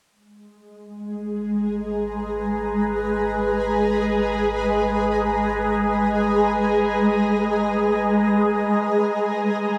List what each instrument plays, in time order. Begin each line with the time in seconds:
0.11 synth drone G#1, ambient pad G#3
0.67 ambient pad G#4
1.15 ambient pad A#5
1.51 ambient pad B4
2.27 ambient pad D#5
9.51 synth drone D#2, ambient pad D#3